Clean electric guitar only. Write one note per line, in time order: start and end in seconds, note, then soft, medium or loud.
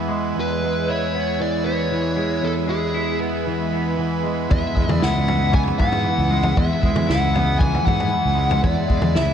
0.00 0.35 E2 medium
0.00 1.39 E3 medium
0.00 1.14 B3 medium
0.00 0.88 E4 medium
0.08 0.62 G#3 medium
0.35 2.42 E2 medium
0.63 2.16 G#3 medium
0.88 2.94 E4 medium
1.15 1.65 B3 medium
1.40 1.91 E3 medium
1.66 3.20 B3 medium
1.91 3.46 E3 medium
2.16 2.67 G#3 medium
2.42 4.49 E2 medium
2.67 4.23 G#3 medium
2.94 4.99 E4 medium
3.20 3.72 B3 medium
3.47 3.97 E3 medium
3.72 5.26 B3 medium
3.98 5.51 E3 medium
4.24 4.75 G#3 medium
4.50 6.57 E2 medium
4.75 6.30 G#3 medium
5.00 7.07 E4 medium
5.26 5.78 B3 medium
5.52 6.03 E3 medium
5.79 7.33 B3 medium
6.04 7.59 E3 medium
6.30 6.82 G#3 medium
6.57 8.63 E2 medium
6.83 8.34 G#3 medium
7.07 9.14 E4 medium
7.34 7.84 B3 medium
7.59 8.10 E3 medium
7.84 9.34 B3 medium
8.11 9.34 E3 medium
8.35 8.88 G#3 medium
8.63 9.34 E2 medium
8.88 9.34 G#3 medium
9.15 9.34 E4 medium